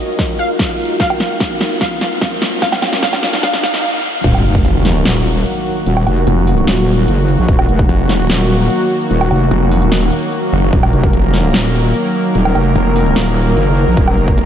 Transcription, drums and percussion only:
0.19 kick medium
0.19 snare medium
0.19 closed hi-hat medium
0.39 closed hi-hat medium
0.59 kick medium
0.59 snare medium
0.59 closed hi-hat medium
0.80 closed hi-hat medium
1.00 kick loud
1.00 snare medium
1.00 closed hi-hat medium
1.10 low woodblock medium
1.20 snare medium
1.20 closed hi-hat medium
1.40 kick loud
1.40 snare medium
1.40 closed hi-hat medium
1.61 snare medium
1.61 open hi-hat medium
1.81 kick medium
1.81 snare medium
1.81 closed hi-hat medium
2.01 snare medium
2.01 closed hi-hat medium
2.21 kick loud
2.21 snare medium
2.21 closed hi-hat medium
2.42 snare medium
2.42 closed hi-hat medium
2.62 kick medium
2.62 snare medium
2.62 closed hi-hat medium
2.72 snare medium
2.72 low woodblock medium
2.82 snare medium
2.82 closed hi-hat medium
2.82 low woodblock medium
2.93 snare medium
3.03 kick loud
3.03 snare medium
3.03 closed hi-hat medium
3.13 snare medium
3.13 low woodblock medium
3.23 snare loud
3.23 open hi-hat medium
3.33 snare medium
3.43 kick loud
3.43 snare loud
3.43 closed hi-hat medium
3.53 snare loud
3.63 snare loud
3.63 closed hi-hat medium
3.74 snare medium
4.24 kick loud
4.24 closed hi-hat medium
4.24 crash loud
4.35 low woodblock medium
4.45 closed hi-hat medium
4.55 kick loud
4.65 closed hi-hat medium
4.85 snare medium
4.85 open hi-hat medium
4.95 closed hi-hat medium
5.05 snare loud
5.05 closed hi-hat medium
5.26 closed hi-hat medium
5.31 closed hi-hat medium
5.46 closed hi-hat medium
5.66 closed hi-hat medium
5.86 closed hi-hat medium
5.97 low woodblock medium
6.07 closed hi-hat medium
6.07 low woodblock medium
6.27 closed hi-hat medium
6.47 open hi-hat medium
6.58 closed hi-hat medium
6.67 snare loud
6.67 closed hi-hat medium
6.88 closed hi-hat medium
6.93 closed hi-hat medium
7.08 closed hi-hat medium
7.28 closed hi-hat medium
7.49 kick loud
7.49 closed hi-hat medium
7.59 low woodblock medium
7.69 closed hi-hat medium
7.79 kick loud
7.89 closed hi-hat medium
8.09 snare medium
8.09 open hi-hat medium
8.20 closed hi-hat medium
8.30 snare loud
8.30 closed hi-hat medium
8.50 closed hi-hat medium
8.55 closed hi-hat medium
8.70 closed hi-hat medium
8.90 closed hi-hat medium
9.11 closed hi-hat medium
9.21 low woodblock medium
9.31 closed hi-hat medium
9.31 low woodblock medium
9.51 closed hi-hat medium
9.71 open hi-hat medium
9.82 closed hi-hat medium
9.92 snare loud
9.92 closed hi-hat medium
10.12 closed hi-hat soft
10.17 closed hi-hat medium
10.22 closed hi-hat soft
10.32 closed hi-hat medium
10.53 closed hi-hat medium
10.73 kick loud
10.73 closed hi-hat medium
10.83 low woodblock medium
10.93 closed hi-hat medium
11.03 kick loud
11.13 closed hi-hat medium
11.34 snare medium
11.34 open hi-hat medium
11.44 closed hi-hat soft
11.54 snare loud
11.54 closed hi-hat medium
11.74 closed hi-hat soft
11.79 closed hi-hat medium
11.94 closed hi-hat medium
12.15 closed hi-hat soft
12.35 closed hi-hat medium
12.45 low woodblock medium
12.55 closed hi-hat medium
12.55 low woodblock medium
12.76 closed hi-hat medium
12.96 open hi-hat medium
13.06 closed hi-hat soft
13.16 snare loud
13.16 closed hi-hat medium
13.36 closed hi-hat soft
13.42 closed hi-hat medium
13.57 closed hi-hat medium
13.77 closed hi-hat medium
13.97 kick loud
13.97 closed hi-hat medium
14.08 low woodblock medium
14.17 closed hi-hat medium
14.28 kick loud
14.38 closed hi-hat medium

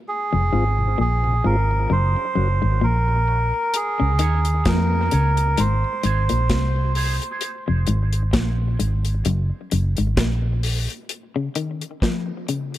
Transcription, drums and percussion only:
3.74 closed hi-hat medium
4.19 closed hi-hat medium
4.45 closed hi-hat medium
4.65 kick loud
4.65 snare loud
4.65 closed hi-hat medium
5.11 closed hi-hat medium
5.37 closed hi-hat soft
5.57 closed hi-hat medium
6.03 closed hi-hat medium
6.29 closed hi-hat medium
6.50 kick medium
6.50 snare loud
6.50 closed hi-hat medium
6.95 open hi-hat medium
7.22 closed hi-hat soft
7.41 closed hi-hat medium
7.87 closed hi-hat medium
8.13 closed hi-hat medium
8.33 kick loud
8.33 snare loud
8.33 closed hi-hat medium
8.80 closed hi-hat medium
9.05 closed hi-hat medium
9.25 closed hi-hat medium
9.71 closed hi-hat medium
9.97 closed hi-hat medium
10.17 kick medium
10.17 snare loud
10.17 closed hi-hat medium
10.63 open hi-hat medium
10.90 closed hi-hat soft
11.09 closed hi-hat medium
11.55 closed hi-hat medium
11.81 closed hi-hat soft
12.02 kick loud
12.02 snare loud
12.02 closed hi-hat medium
12.48 closed hi-hat medium
12.74 closed hi-hat soft

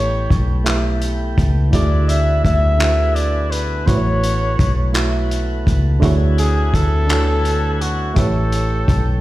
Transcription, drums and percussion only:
0.30 kick medium
0.30 closed hi-hat medium
0.66 clap loud
0.66 closed hi-hat medium
1.02 closed hi-hat medium
1.38 kick loud
1.38 closed hi-hat medium
1.73 kick loud
1.73 closed hi-hat medium
2.09 closed hi-hat medium
2.45 kick medium
2.45 closed hi-hat soft
2.80 clap medium
2.80 closed hi-hat medium
3.16 closed hi-hat soft
3.52 closed hi-hat medium
3.88 kick loud
3.88 closed hi-hat medium
4.24 closed hi-hat medium
4.59 kick loud
4.59 closed hi-hat medium
4.94 clap loud
4.94 closed hi-hat medium
5.31 closed hi-hat medium
5.67 kick loud
5.67 closed hi-hat medium
6.02 kick loud
6.02 closed hi-hat medium
6.38 closed hi-hat medium
6.74 kick medium
6.74 closed hi-hat medium
7.09 clap loud
7.09 closed hi-hat medium
7.45 closed hi-hat medium
7.82 closed hi-hat medium
8.16 kick loud
8.16 closed hi-hat medium
8.52 closed hi-hat medium
8.88 kick loud
8.88 closed hi-hat medium

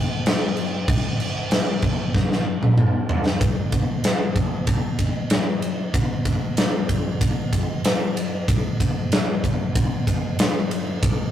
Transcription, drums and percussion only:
0.26 snare loud
0.26 crash medium
0.57 crash medium
0.88 kick loud
0.88 crash medium
1.20 crash medium
1.51 snare loud
1.51 crash medium
1.82 kick medium
1.82 crash medium
2.15 kick medium
2.15 snare medium
2.32 snare medium
2.63 mid tom medium
2.78 mid tom loud
3.09 floor tom medium
3.26 snare medium
3.41 kick loud
3.41 ride medium
3.72 kick medium
3.72 ride medium
4.04 snare loud
4.04 ride medium
4.36 kick medium
4.36 ride medium
4.67 kick loud
4.67 ride medium
4.99 kick medium
4.99 ride medium
5.30 snare loud
5.30 ride medium
5.62 ride medium
5.94 kick loud
5.94 ride medium
6.25 kick medium
6.25 ride medium
6.57 snare loud
6.57 ride loud
6.89 kick medium
6.89 ride medium
7.21 kick loud
7.21 ride medium
7.53 kick medium
7.53 ride medium
7.85 snare loud
7.85 ride loud
8.17 ride medium
8.48 kick loud
8.48 ride medium
8.80 kick medium
8.80 ride medium
9.12 snare loud
9.12 ride medium
9.44 kick medium
9.44 ride medium
9.75 kick loud
9.75 ride medium
10.07 kick medium
10.07 ride medium
10.39 snare loud
10.39 ride loud
10.71 ride medium
11.03 kick loud
11.03 ride medium

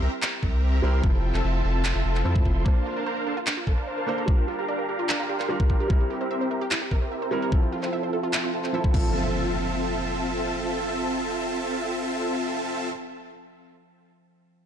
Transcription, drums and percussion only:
0.22 finger snap medium
0.22 clap loud
0.43 kick medium
1.04 kick loud
1.34 clap soft
1.85 finger snap medium
1.85 clap loud
2.15 clap soft
2.36 kick loud
2.45 kick medium
2.66 kick loud
3.47 finger snap medium
3.47 clap loud
3.67 kick medium
4.28 kick loud
5.09 finger snap medium
5.09 clap loud
5.40 clap soft
5.60 kick loud
5.70 kick medium
5.90 kick loud
6.71 finger snap medium
6.71 clap loud
6.91 kick medium
7.52 kick loud
7.83 clap soft
8.33 finger snap medium
8.33 clap loud
8.64 clap soft
8.84 kick medium
8.94 kick loud
8.94 crash medium

